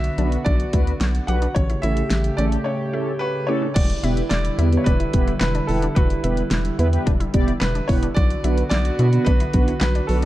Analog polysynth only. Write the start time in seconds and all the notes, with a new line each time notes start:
0.19 B3 D4 F#4 B4
0.73 B3 D4 F#4 B4
1.28 B3 D4 F#4 B4
1.84 A3 C#4 E4 A4
2.38 A3 C#4 E4 A4
2.93 A3 C#4 E4 A4
3.48 A3 C#4 E4 A4
4.03 B3 E4 G4 B4
4.59 B3 E4 G4 B4
4.72 B3 E4 G4 B4
5.13 B3 E4 G4 B4
5.69 B3 E4 G4 B4
6.24 B3 E4 G4 B4
6.79 B3 E4 G4 B4
6.93 B3 E4 G4 B4
7.34 B3 E4 G4 D5
7.89 B3 E4 G4 B4
8.44 B3 D4 F#4 B4
8.99 B3 D4 F#4 B4
9.13 B3 D4 F#4 B4
9.54 B3 D4 F#4 B4
10.09 B3 D4 F#4 B4